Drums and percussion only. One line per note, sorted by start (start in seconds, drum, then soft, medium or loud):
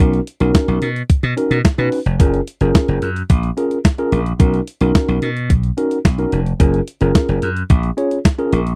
0.00 kick loud
0.13 closed hi-hat soft
0.27 closed hi-hat medium
0.40 closed hi-hat medium
0.55 kick loud
0.55 snare loud
0.55 closed hi-hat medium
0.68 closed hi-hat soft
0.82 closed hi-hat medium
0.96 closed hi-hat soft
1.10 kick loud
1.10 closed hi-hat medium
1.23 closed hi-hat soft
1.37 closed hi-hat medium
1.51 closed hi-hat soft
1.65 kick loud
1.65 snare loud
1.65 closed hi-hat medium
1.78 closed hi-hat soft
1.92 open hi-hat medium
2.06 closed hi-hat soft
2.20 kick loud
2.20 closed hi-hat medium
2.34 closed hi-hat soft
2.48 closed hi-hat medium
2.61 closed hi-hat medium
2.75 kick loud
2.75 snare loud
2.75 closed hi-hat medium
2.88 closed hi-hat soft
3.02 closed hi-hat medium
3.16 closed hi-hat soft
3.30 kick loud
3.30 closed hi-hat medium
3.43 closed hi-hat soft
3.58 closed hi-hat medium
3.71 closed hi-hat soft
3.85 kick loud
3.85 snare loud
3.85 closed hi-hat medium
3.98 closed hi-hat soft
4.12 closed hi-hat medium
4.26 closed hi-hat soft
4.40 kick loud
4.40 closed hi-hat medium
4.54 closed hi-hat soft
4.67 closed hi-hat medium
4.81 closed hi-hat medium
4.95 kick loud
4.95 snare loud
4.95 closed hi-hat medium
5.08 closed hi-hat soft
5.22 closed hi-hat medium
5.37 closed hi-hat soft
5.50 kick loud
5.50 closed hi-hat medium
5.63 closed hi-hat soft
5.78 closed hi-hat medium
5.91 closed hi-hat soft
6.05 kick loud
6.05 snare loud
6.05 closed hi-hat loud
6.18 closed hi-hat soft
6.32 closed hi-hat medium
6.46 closed hi-hat soft
6.60 kick loud
6.60 closed hi-hat medium
6.74 closed hi-hat soft
6.88 closed hi-hat medium
7.01 closed hi-hat medium
7.15 kick loud
7.15 snare loud
7.15 closed hi-hat medium
7.29 closed hi-hat soft
7.42 closed hi-hat medium
7.57 closed hi-hat soft
7.70 kick loud
7.70 closed hi-hat medium
7.83 closed hi-hat soft
7.98 closed hi-hat medium
8.11 closed hi-hat soft
8.25 kick loud
8.25 snare loud
8.25 closed hi-hat medium
8.39 closed hi-hat soft
8.53 closed hi-hat medium
8.67 closed hi-hat soft